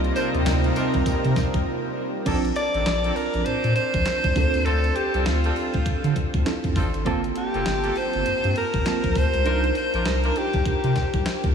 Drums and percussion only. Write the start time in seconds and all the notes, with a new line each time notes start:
0.04 closed hi-hat
0.16 closed hi-hat, tambourine
0.35 closed hi-hat
0.46 snare, clap, closed hi-hat, tambourine
0.64 closed hi-hat
0.76 closed hi-hat, tambourine
0.94 kick, closed hi-hat
1.06 kick, closed hi-hat, tambourine
1.24 closed hi-hat
1.36 kick, snare, closed hi-hat, tambourine
1.54 kick, closed hi-hat
2.26 kick, closed hi-hat, crash
2.45 closed hi-hat
2.56 closed hi-hat
2.74 closed hi-hat
2.86 snare, clap, closed hi-hat
3.04 closed hi-hat
3.16 open hi-hat
3.34 closed hi-hat
3.46 closed hi-hat
3.64 closed hi-hat
3.76 closed hi-hat
3.94 kick, closed hi-hat
4.06 snare, clap, closed hi-hat
4.24 kick, closed hi-hat
4.36 kick, open hi-hat
4.54 closed hi-hat
4.66 closed hi-hat
4.84 closed hi-hat
4.96 closed hi-hat
5.14 closed hi-hat
5.26 snare, clap, closed hi-hat
5.44 closed hi-hat
5.56 open hi-hat
5.74 kick, closed hi-hat
5.86 kick, closed hi-hat
6.04 closed hi-hat
6.16 kick, closed hi-hat
6.34 kick, closed hi-hat
6.46 snare, clap, closed hi-hat
6.64 kick, closed hi-hat
6.76 kick, open hi-hat
6.94 closed hi-hat
7.06 kick, closed hi-hat
7.24 closed hi-hat
7.36 closed hi-hat
7.54 closed hi-hat
7.66 snare, clap, closed hi-hat
7.84 closed hi-hat
7.96 open hi-hat
8.13 closed hi-hat
8.26 closed hi-hat
8.44 closed hi-hat
8.56 closed hi-hat
8.74 kick, closed hi-hat
8.86 snare, clap, closed hi-hat
9.04 kick, closed hi-hat
9.15 kick, open hi-hat
9.34 closed hi-hat
9.46 closed hi-hat
9.64 closed hi-hat
9.75 closed hi-hat
9.94 closed hi-hat
10.06 snare, clap, closed hi-hat
10.24 closed hi-hat
10.36 closed hi-hat
10.53 kick, closed hi-hat
10.66 kick, closed hi-hat
10.84 closed hi-hat
10.96 kick, snare, closed hi-hat
11.14 kick, closed hi-hat
11.26 snare, clap, closed hi-hat
11.44 kick, closed hi-hat